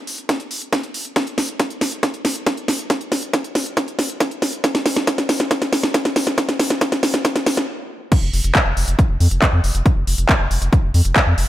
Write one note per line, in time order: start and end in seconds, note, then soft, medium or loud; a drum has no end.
0.07 open hi-hat loud
0.18 closed hi-hat soft
0.29 kick loud
0.29 snare medium
0.29 closed hi-hat medium
0.40 closed hi-hat soft
0.51 open hi-hat loud
0.62 closed hi-hat soft
0.73 kick loud
0.73 snare medium
0.73 closed hi-hat medium
0.83 closed hi-hat soft
0.94 open hi-hat loud
1.05 closed hi-hat soft
1.16 kick loud
1.16 snare medium
1.16 closed hi-hat medium
1.27 closed hi-hat soft
1.38 snare medium
1.38 open hi-hat loud
1.49 closed hi-hat soft
1.60 kick loud
1.60 snare medium
1.60 closed hi-hat medium
1.70 closed hi-hat soft
1.81 snare medium
1.81 open hi-hat loud
1.92 closed hi-hat soft
2.03 kick loud
2.03 snare medium
2.03 closed hi-hat medium
2.14 closed hi-hat soft
2.25 snare medium
2.25 open hi-hat loud
2.36 closed hi-hat soft
2.46 kick loud
2.46 snare medium
2.46 closed hi-hat medium
2.57 closed hi-hat soft
2.68 snare medium
2.68 open hi-hat loud
2.79 closed hi-hat soft
2.90 kick loud
2.90 snare medium
2.90 closed hi-hat medium
3.01 closed hi-hat soft
3.12 snare medium
3.12 open hi-hat loud
3.23 closed hi-hat soft
3.33 kick loud
3.33 snare medium
3.33 closed hi-hat loud
3.44 closed hi-hat soft
3.55 snare medium
3.55 open hi-hat loud
3.66 closed hi-hat soft
3.77 kick loud
3.77 snare medium
3.77 closed hi-hat medium
3.88 closed hi-hat soft
3.99 snare medium
3.99 open hi-hat loud
4.10 closed hi-hat soft
4.20 kick loud
4.20 snare medium
4.20 closed hi-hat loud
4.31 closed hi-hat soft
4.42 snare medium
4.42 open hi-hat loud
4.53 closed hi-hat soft
4.64 kick loud
4.64 snare medium
4.64 closed hi-hat loud
4.75 snare medium
4.75 closed hi-hat soft
4.86 snare medium
4.86 open hi-hat loud
4.96 snare medium
4.96 closed hi-hat soft
5.07 kick loud
5.07 snare loud
5.07 closed hi-hat loud
5.18 snare medium
5.18 closed hi-hat soft
5.29 snare loud
5.29 open hi-hat loud
5.40 snare medium
5.40 closed hi-hat soft
5.51 kick loud
5.51 snare loud
5.51 closed hi-hat loud
5.62 snare medium
5.62 closed hi-hat soft
5.73 snare loud
5.73 open hi-hat loud
5.83 snare medium
5.83 closed hi-hat soft
5.94 kick loud
5.94 snare loud
5.94 closed hi-hat loud
6.05 snare medium
6.05 closed hi-hat soft
6.16 snare loud
6.16 open hi-hat loud
6.27 snare medium
6.27 closed hi-hat soft
6.38 kick loud
6.38 snare loud
6.38 closed hi-hat loud
6.49 snare medium
6.49 closed hi-hat soft
6.59 snare loud
6.59 open hi-hat loud
6.70 snare medium
6.70 closed hi-hat soft
6.81 kick loud
6.81 snare loud
6.81 closed hi-hat loud
6.92 snare medium
6.92 closed hi-hat soft
7.03 snare loud
7.03 open hi-hat loud
7.14 snare medium
7.14 closed hi-hat soft
7.25 kick loud
7.25 snare loud
7.25 closed hi-hat loud
7.36 snare medium
7.36 closed hi-hat soft
7.46 snare loud
7.46 open hi-hat loud
7.57 snare medium
7.57 closed hi-hat soft
8.12 kick loud
8.12 closed hi-hat medium
8.12 crash loud
8.23 8.30 F1 medium
8.33 8.41 F1 loud
8.33 open hi-hat loud
8.44 8.51 F1 medium
8.44 closed hi-hat medium
8.55 kick loud
8.55 clap loud
8.55 closed hi-hat medium
8.66 8.73 F1 medium
8.77 8.84 F1 loud
8.77 open hi-hat loud
8.88 8.95 F1 medium
8.88 closed hi-hat medium
8.99 kick loud
8.99 closed hi-hat medium
9.10 9.17 F1 medium
9.20 9.28 F2 loud
9.20 open hi-hat loud
9.31 9.38 F1 medium
9.31 closed hi-hat medium
9.42 kick loud
9.42 clap loud
9.42 closed hi-hat medium
9.53 9.60 F2 medium
9.64 9.71 F1 loud
9.64 open hi-hat loud
9.75 9.82 F1 medium
9.75 closed hi-hat medium
9.86 kick loud
9.86 closed hi-hat medium
9.96 10.04 F1 medium
10.07 10.15 F1 loud
10.07 open hi-hat loud
10.18 10.25 F1 medium
10.18 closed hi-hat medium
10.29 kick loud
10.29 clap loud
10.29 closed hi-hat medium
10.40 10.47 F1 medium
10.51 10.58 F1 loud
10.51 open hi-hat loud
10.62 10.69 F1 medium
10.62 closed hi-hat medium
10.73 kick loud
10.73 closed hi-hat medium
10.84 10.91 F1 medium
10.94 11.01 F2 loud
10.94 open hi-hat loud
11.05 11.12 F1 loud
11.05 closed hi-hat medium
11.16 kick loud
11.16 clap loud
11.16 closed hi-hat medium
11.27 11.34 F2 medium
11.38 11.45 F1 loud
11.38 open hi-hat loud